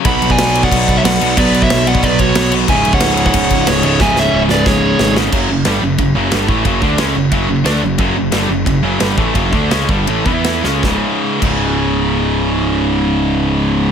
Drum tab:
CC |x-x-x-x-x-x-x-x-|x-x-x-x-x-x-x-x-|x-x-x-x-x-x-x-x-|----------------|
RD |----------------|----------------|----------------|----------------|
SD |----o-------o---|----o-------o---|----o-------o---|o-o---o-o---o-o-|
BD |o--o---oo-o-----|o--o---oo-o-----|o--o---oo-o-----|o-------o-------|

CC |x---------------|----------------|----------------|----------------|
RD |----b---b---b---|b---b---b---b---|b---b---b---b---|b---b---b---b---|
SD |----o-------o---|----o-------o---|----o-------o---|----o-------o-o-|
BD |o-------o-----o-|o-o-----o-------|o-------o-----o-|o-o---o---o-----|

CC |------x---------|----------------|
RD |----------------|----------------|
SD |o---------------|----------------|
BD |o-----o---------|----------------|